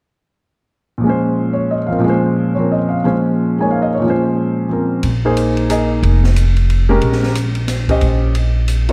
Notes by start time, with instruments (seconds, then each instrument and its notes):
0.98 grand piano A#2 F3
1.04 grand piano G#3 C#4
1.09 grand piano C5
1.53 grand piano C#5
1.71 grand piano D#5
1.87 grand piano F3 C4 F5
1.92 grand piano A#4
1.99 grand piano A#2 F3
2.04 grand piano G#3 C#4
2.09 grand piano C5
2.55 grand piano F3 C4 C#5
2.59 grand piano A#4
2.72 grand piano D#5
2.89 grand piano F5
3.04 grand piano A#2 F3 G#3 C#4 C5
3.59 grand piano G#3 A#3 D#4 C#5 G#5
3.71 grand piano F5
3.82 grand piano D#5
3.94 grand piano C#5
4.00 grand piano A#2 F3
4.05 grand piano G#3 C#4
4.10 grand piano C5
4.69 grand piano F3 C4 A#4
5.03 upright bass A#1, ride
5.25 grand piano A#3 D#4 G#4 C5
5.37 hi-hat pedal, ride
5.57 ride
5.70 grand piano A#3 D#4 G#4 D#5, hi-hat pedal, ride
6.03 upright bass F1, ride
6.24 snare
6.36 hi-hat pedal, ride
6.56 ride
6.70 ride
6.89 grand piano G#3 C#4 G4 A#4
7.01 upright bass A#1, ride
7.12 snare
7.23 snare
7.35 hi-hat pedal, ride
7.55 ride
7.68 snare, hi-hat pedal, ride
7.88 grand piano C#4 G4 C5 D#5, kick, ride
8.01 upright bass A#1, ride
8.35 ride
8.68 hi-hat pedal, ride
8.89 grand piano C3 F4, ride